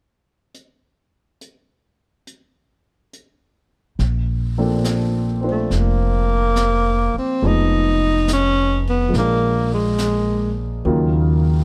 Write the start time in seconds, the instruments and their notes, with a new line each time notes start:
0.54 closed hi-hat
1.41 closed hi-hat
2.27 closed hi-hat
3.13 closed hi-hat
3.99 upright bass A#1, brush sweep, snare
4.58 upright piano A#2 F3 C4 D4 A4
4.84 snare, hi-hat pedal
5.41 upright piano C4 D4 F4 C5
5.50 tenor saxophone A3
5.71 upright bass F1, brush sweep, snare
5.78 tenor saxophone A#3
6.56 snare, hi-hat pedal
7.15 tenor saxophone C4, muted upright bass stroke
7.42 upright bass F1, upright piano F3 G#3 B3 D#4 G#4, brush sweep
7.47 tenor saxophone D#4
8.28 snare, hi-hat pedal
8.33 tenor saxophone C#4
8.89 tenor saxophone B3
9.08 upright piano F3 G#3
9.13 upright bass A#1, upright piano A#3 D4, brush sweep, snare
9.18 tenor saxophone A#3, upright piano G#4
9.74 tenor saxophone G#3
9.98 snare, hi-hat pedal
10.84 upright bass D#2, upright piano C#3 D#3 F#3 A#3 F4, brush sweep